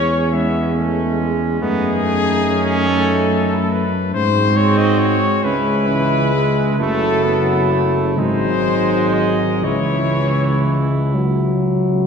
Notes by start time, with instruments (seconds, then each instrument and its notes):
Already playing: tuba E2, euphonium G#3, flugelhorn C#4, trombone C#4, cornet C#5
0.31 euphonium G#3, trombone B3, cornet E5
0.36 flugelhorn C#4
0.77 trombone A3
1.19 trombone G#3
1.60 tuba F#2, euphonium A3, trombone B3, flugelhorn D#4, cornet G#4
2.03 trombone A3
2.44 trombone C#4
2.87 euphonium A3, flugelhorn D#4, cornet A4
3.52 flugelhorn E4
3.73 cornet B4
4.14 tuba G#2, euphonium G#3, trombone C4, flugelhorn F#4, cornet C5
4.56 cornet C#5
4.78 cornet D#5
4.99 cornet C#5
5.44 tuba C#2, euphonium G#3, trombone C#4, flugelhorn E4, cornet B4
5.88 trombone E3
6.33 trombone G#3
6.78 tuba F#1, euphonium F#3, trombone A3, flugelhorn E4, cornet A4
7.25 trombone B3
7.72 trombone A3
8.16 tuba G#1, euphonium F#3, trombone G#3, flugelhorn D#4, cornet C5
9.14 cornet D#5
9.63 tuba C#2, trombone E3, euphonium E3, flugelhorn E4, cornet C#5
10.67 euphonium G#3
11.15 euphonium F#3